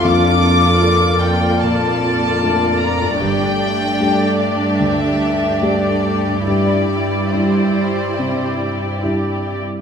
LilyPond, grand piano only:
\new Staff \with { instrumentName = "Grand piano" } { \time 4/4 \key c \mixolydian \tempo 4 = 74 f,4 <bes d' a'>4 bes,4 <a bes d'>4 | g,4 <a d' g'>4 d,4 <a d' g'>4 | g,4 <g d' e'>4 c4 <g d' e'>4 | }